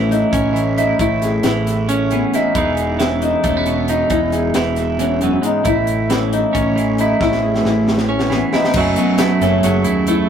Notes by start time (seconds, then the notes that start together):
Already playing: A1 A2 E3 B3 C#4 E4
0.11 D#4, closed hi-hat
0.33 A1 C#4, kick, closed hi-hat
0.53 E3, closed hi-hat
0.77 D#4 E4, closed hi-hat
0.99 A1 A2 E4, kick, closed hi-hat
1.22 G#4, snare, closed hi-hat
1.43 A1 E3 E4, snare, closed hi-hat
1.67 snare, closed hi-hat
1.89 C#4, closed hi-hat
2.11 E3 B3, closed hi-hat
2.33 D#4 E4, snare, closed hi-hat
2.55 E1 E2 E3 B3 D#4 G#4, kick, closed hi-hat
2.77 closed hi-hat
2.99 E3 C#4, snare, closed hi-hat
3.22 D#4, closed hi-hat
3.44 E1 A3 C#4, kick, snare, closed hi-hat
3.57 B3
3.66 B2, closed hi-hat
3.88 D#4, closed hi-hat
4.10 E1 E2 D#4 E4, kick, closed hi-hat
4.32 G#4, closed hi-hat
4.54 E1 E3, snare, closed hi-hat
4.76 snare, closed hi-hat
4.99 E2 C#4, closed hi-hat
5.21 F#2 B3, closed hi-hat
5.42 G#2 D#4, closed hi-hat
5.64 A1 A2 E4, kick, closed hi-hat
5.87 closed hi-hat
6.10 E3 C#4, snare, closed hi-hat
6.33 D#4, closed hi-hat
6.53 A1 C#4, kick, closed hi-hat
6.76 E3, closed hi-hat
6.98 D#4 E4, closed hi-hat
7.21 A1 A2 E4, kick, snare
7.32 snare
7.43 G#4
7.55 snare
7.65 A1 E4, snare
7.88 snare
7.98 snare
8.09 C#4
8.19 snare
8.30 E3 B3, snare
8.53 D#4 E4, snare
8.64 snare
8.74 F#1 F#2 F#3, kick, crash
8.78 A3 E4 G#4
8.96 F#3 B3, closed hi-hat
9.18 A3 E4, snare, closed hi-hat
9.41 F#1 A3 C#4, snare, closed hi-hat
9.63 F#1 F#3 G#4, closed hi-hat
9.84 D#2 E4, closed hi-hat
10.07 A3 E4, closed hi-hat